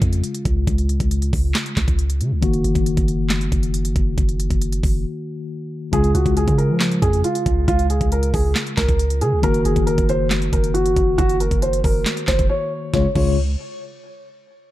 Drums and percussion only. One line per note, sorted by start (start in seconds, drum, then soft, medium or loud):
0.02 kick medium
0.02 closed hi-hat medium
0.13 closed hi-hat medium
0.24 closed hi-hat medium
0.35 closed hi-hat medium
0.45 kick loud
0.45 closed hi-hat medium
0.67 kick loud
0.67 closed hi-hat medium
0.78 closed hi-hat medium
0.89 closed hi-hat medium
1.00 kick medium
1.00 closed hi-hat medium
1.11 closed hi-hat medium
1.22 closed hi-hat medium
1.33 kick loud
1.33 open hi-hat medium
1.54 snare loud
1.54 clap medium
1.54 closed hi-hat medium
1.66 closed hi-hat medium
1.76 kick medium
1.76 snare medium
1.76 clap medium
1.76 closed hi-hat medium
1.88 kick loud
1.88 closed hi-hat medium
1.99 closed hi-hat medium
2.10 closed hi-hat medium
2.21 closed hi-hat medium
2.43 kick loud
2.43 closed hi-hat medium
2.53 closed hi-hat medium
2.64 closed hi-hat medium
2.75 kick medium
2.75 closed hi-hat medium
2.86 closed hi-hat medium
2.97 kick loud
2.97 closed hi-hat medium
3.08 closed hi-hat medium
3.30 snare loud
3.30 clap medium
3.30 closed hi-hat medium
3.41 closed hi-hat medium
3.52 kick medium
3.52 closed hi-hat medium
3.63 closed hi-hat medium
3.74 closed hi-hat medium
3.85 closed hi-hat medium
3.96 kick loud
3.96 closed hi-hat medium
4.18 kick loud
4.18 closed hi-hat medium
4.29 closed hi-hat medium
4.40 closed hi-hat medium
4.51 kick medium
4.51 closed hi-hat medium
4.62 closed hi-hat medium
4.72 closed hi-hat medium
4.83 kick loud
4.83 open hi-hat medium
5.93 kick loud
5.93 closed hi-hat medium
6.04 closed hi-hat medium
6.15 closed hi-hat medium
6.26 kick medium
6.26 closed hi-hat medium
6.37 closed hi-hat medium
6.48 kick loud
6.48 closed hi-hat medium
6.59 closed hi-hat medium
6.80 snare loud
6.80 clap medium
6.80 closed hi-hat medium
6.91 closed hi-hat medium
7.02 kick medium
7.02 closed hi-hat medium
7.13 closed hi-hat medium
7.24 closed hi-hat medium
7.35 closed hi-hat medium
7.46 kick loud
7.46 closed hi-hat medium
7.68 kick loud
7.68 closed hi-hat medium
7.79 closed hi-hat medium
7.90 closed hi-hat medium
8.01 kick medium
8.01 closed hi-hat medium
8.12 closed hi-hat medium
8.23 closed hi-hat medium
8.34 kick loud
8.34 open hi-hat medium
8.55 snare loud
8.55 clap medium
8.55 closed hi-hat medium
8.67 closed hi-hat medium
8.77 kick medium
8.77 snare loud
8.77 clap medium
8.77 closed hi-hat medium
8.88 kick loud
8.88 closed hi-hat medium
8.99 closed hi-hat medium
9.10 closed hi-hat medium
9.21 closed hi-hat medium
9.43 kick loud
9.43 closed hi-hat medium
9.54 closed hi-hat medium
9.65 closed hi-hat medium
9.76 kick medium
9.76 closed hi-hat medium
9.87 closed hi-hat medium
9.98 kick loud
9.98 closed hi-hat medium
10.09 closed hi-hat medium
10.30 snare loud
10.30 clap medium
10.30 closed hi-hat medium
10.42 closed hi-hat medium
10.53 kick medium
10.53 closed hi-hat medium
10.64 closed hi-hat medium
10.75 closed hi-hat medium
10.86 closed hi-hat medium
10.96 kick loud
10.96 closed hi-hat medium
11.18 kick loud
11.18 closed hi-hat medium
11.29 closed hi-hat medium
11.40 closed hi-hat medium
11.51 kick medium
11.51 closed hi-hat medium
11.62 closed hi-hat medium
11.73 closed hi-hat medium
11.84 kick loud
11.84 open hi-hat medium
12.06 snare loud
12.06 clap medium
12.06 closed hi-hat medium
12.17 closed hi-hat medium
12.27 kick medium
12.27 snare loud
12.27 clap medium
12.27 closed hi-hat medium
12.39 kick loud
12.39 closed hi-hat medium
12.94 kick loud
12.94 snare medium
13.15 kick loud
13.15 crash medium